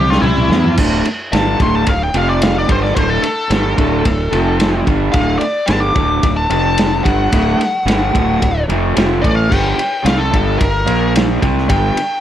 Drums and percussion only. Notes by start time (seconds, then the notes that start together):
0.12 snare
0.23 mid tom
0.37 mid tom
0.52 snare
0.64 floor tom
0.77 kick, crash
1.05 ride
1.33 snare, ride
1.60 kick, ride
1.87 kick, ride
2.14 ride
2.42 snare, ride
2.69 kick, ride
2.85 snare
2.96 kick, ride
3.23 ride
3.51 snare, ride
3.78 kick, ride
4.05 kick, ride
4.33 ride
4.60 snare, ride
4.87 kick, ride
5.14 kick, ride
5.41 ride
5.67 snare, ride
5.96 kick, ride
6.23 kick, ride
6.50 ride
6.78 snare, ride
7.05 kick, ride
7.32 kick, ride
7.61 snare, ride
7.88 snare, ride
8.15 kick, ride
8.42 kick, ride
8.70 ride
8.97 snare, ride
9.24 kick, ride
9.52 kick, crash
9.79 ride
10.06 snare, ride
10.34 kick, ride
10.61 kick, ride
10.87 ride
11.16 snare, ride
11.42 kick, ride
11.58 snare
11.70 kick, ride
11.97 ride